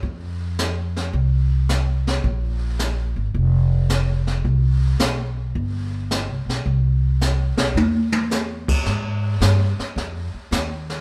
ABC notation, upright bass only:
X:1
M:4/4
L:1/8
Q:"Swing" 1/4=109
K:C
V:1 name="Upright bass" clef=bass
F,,4 C,,4 | _B,,,3 _A,,, F,,,4 | C,,2 B,,,2 G,,,2- (3G,,, C,, B,,, | C,,3 B,,, E,,4 |
_A,,2 G,, z F,, z _E,,2 |]